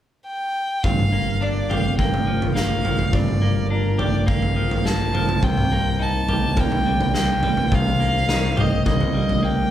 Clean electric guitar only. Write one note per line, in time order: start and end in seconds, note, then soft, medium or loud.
0.84 2.27 G2 soft
1.12 1.99 A#3 soft
1.41 2.84 D4 soft
1.70 3.98 G4 soft
1.99 2.55 A#3 soft
2.27 2.83 F3 soft
2.55 3.41 A#3 soft
2.84 4.28 F3 soft
3.13 4.56 G2 soft
3.42 4.26 A#3 soft
3.70 5.14 D4 soft
3.98 6.29 G4 soft
4.27 4.84 A#3 soft
4.56 5.13 F3 soft
4.85 5.46 A#3 soft
5.14 5.43 F3 soft
5.43 6.86 C3 medium
5.72 6.57 A#3 soft
5.99 8.28 D#4 soft
6.29 8.57 G4 soft
6.57 7.13 A#3 soft
6.86 7.43 G3 soft
7.14 7.99 A#3 soft
7.43 9.14 G3 soft
7.71 9.15 C3 soft
8.00 8.86 A#3 soft
8.29 9.71 D#4 soft
8.57 9.71 G4 soft
8.86 9.42 A#3 soft
9.14 9.70 G3 soft
9.42 9.71 A#3 soft